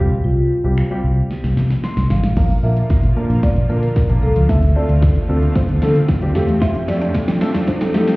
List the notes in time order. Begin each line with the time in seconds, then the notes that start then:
Already playing: G3 C4 G4
0.00 F4 G4
0.11 B1
0.24 C2 F4
0.64 C2 G3 C4 F4 G4
0.78 finger snap
0.91 G3 C4 F4 G4
1.04 C2
1.31 snare
1.44 C2, snare
1.57 C3, snare
1.70 snare
1.84 C6, snare
1.97 C2, snare
2.10 G#1 F5, snare
2.23 A1, snare
2.37 A#1 D3 F3 A#3 D4 F4 A#4 F5, kick, snare, closed hi-hat, crash, riser
2.50 closed hi-hat
2.63 A#1 A#3 D4 F4 A#4 E5
2.77 closed hi-hat
2.90 F5, muted fingered electric bass stroke, kick, snare, closed hi-hat
3.03 A#2, closed hi-hat
3.16 A#3 D4 F4 A#4
3.30 A#1 D4, closed hi-hat
3.43 D5, kick, snare, closed hi-hat
3.56 A#1 F5, closed hi-hat
3.69 A#2 F3 A#3 D4 F4 A#4
3.83 A#3, closed hi-hat
3.96 kick, snare, closed hi-hat
4.09 A#1 A#3 D4 F4 A#4, closed hi-hat
4.23 C2 A4 F5
4.36 C#2 F3, closed hi-hat
4.49 D2 A3 C4 D4 F4 A4 E5, kick, snare, closed hi-hat
4.62 closed hi-hat
4.75 C4 D4 F4 A4 D5
4.89 D2, closed hi-hat
5.02 A4, kick, snare, closed hi-hat
5.16 closed hi-hat
5.29 D2 C4 D4 F4 A4
5.42 D4, closed hi-hat
5.55 C5, kick, snare, closed hi-hat
5.69 D2 A4, closed hi-hat
5.82 D3 A3 C4 D4 F4 A4, snare
5.95 C4, closed hi-hat
6.08 kick, snare, closed hi-hat
6.22 D2 C4 D4 F4 G4, closed hi-hat
6.35 F2 F3 A3 C4 F4 G4 A4, snare
6.48 E2 A3, closed hi-hat
6.62 F2 F4 E5, kick, snare, closed hi-hat, shaker
6.75 closed hi-hat, shaker
6.88 F2 A3 C4 F4 G4 D5, muted clean electric guitar stroke, snare, open hi-hat, shaker
7.02 D4, closed hi-hat, shaker
7.14 A4, muted clean electric guitar stroke, kick, snare, closed hi-hat, shaker
7.28 F3 C4, snare, closed hi-hat, shaker
7.41 A3 C4 F4 A4, snare, open hi-hat, shaker
7.54 F2 F4, snare, shaker
7.68 C5, muted clean electric guitar stroke, kick, snare, closed hi-hat, shaker
7.81 F2 C4 A4, snare, closed hi-hat, shaker
7.94 F3 A3 C4 F4 G4 A4, snare, open hi-hat, shaker
8.08 C4, snare, closed hi-hat, shaker